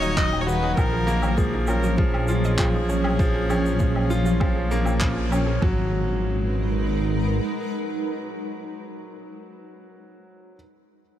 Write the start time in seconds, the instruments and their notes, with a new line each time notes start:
Already playing: detuned saw bass D#1, ambient pad D#3 F#3 F#4 F5, grand piano F#3 D#4 F#4, viola C#5
0.02 synth arpeggio sound D#5, shaker
0.17 grand piano F#3, synth arpeggio sound G#3, viola D#5, kick, clap, shaker
0.32 synth arpeggio sound D#4, low woodblock
0.41 viola C#5
0.47 grand piano F#4, synth arpeggio sound G#4, viola B4, shaker
0.63 synth arpeggio sound G#4
0.77 detuned saw bass A#1, ambient pad A#2, grand piano F3, synth arpeggio sound G#4, viola A#4, kick, low woodblock, shaker
0.93 synth arpeggio sound G#4
1.07 grand piano A#3, synth arpeggio sound G#4, shaker
1.11 ambient pad F3
1.22 synth arpeggio sound C#5, low woodblock, shaker
1.37 grand piano F3, synth arpeggio sound G#3, viola G#4, kick, shaker
1.54 synth arpeggio sound D#4
1.67 grand piano C#4, synth arpeggio sound F4, viola A#4, low woodblock, shaker
1.83 synth arpeggio sound F4, shaker
1.87 ambient pad C#4
1.97 grand piano F3, viola G#4, synth arpeggio sound G#4, kick
2.14 synth arpeggio sound G#4, low woodblock
2.28 grand piano F4, synth arpeggio sound G#4, shaker
2.44 synth arpeggio sound D#5, shaker
2.59 grand piano F3, synth arpeggio sound G#3, kick, clap, low woodblock, shaker
2.74 synth arpeggio sound D#4
2.89 grand piano C#4, synth arpeggio sound G#4, shaker
3.04 synth arpeggio sound G#4, low woodblock
3.19 grand piano F3, synth arpeggio sound G#4, kick, shaker
3.34 synth arpeggio sound G#4
3.50 grand piano C#4, synth arpeggio sound G#4, low woodblock, shaker
3.65 synth arpeggio sound C#5, shaker
3.79 grand piano F3, synth arpeggio sound G#3, kick, shaker
3.95 synth arpeggio sound D#4, low woodblock
4.10 grand piano F4, synth arpeggio sound F4, shaker
4.26 synth arpeggio sound F4, shaker
4.40 grand piano F3, synth arpeggio sound G#4, kick, low woodblock
4.56 synth arpeggio sound G#4
4.71 grand piano A#3, synth arpeggio sound G#4, shaker
4.85 synth arpeggio sound F4, low woodblock, shaker
5.00 grand piano F3, synth arpeggio sound G#4, kick, clap, shaker
5.16 synth arpeggio sound G#5
5.31 grand piano C#4, synth arpeggio sound A#4, low woodblock, shaker
5.46 synth arpeggio sound G#4
5.62 detuned saw bass G#1, grand piano F#3, ambient pad G#3, synth arpeggio sound G#4, kick, floor tom
5.71 ambient pad D#4
5.80 ambient pad A#4
5.89 ambient pad B4